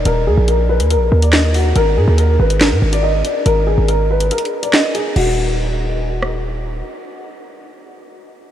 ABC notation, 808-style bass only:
X:1
M:4/4
L:1/16
Q:1/4=141
K:Ebm
V:1 name="808-style bass" clef=bass
E,,,2 E,, B,,,4 E,,3/2 B,,,3/2 E,,6 | A,,,2 A,, E,,3 A,,,3 A,, A,,,4 z2 | A,,,3 A,,,4- A,,, z8 | E,,,16 |
z16 |]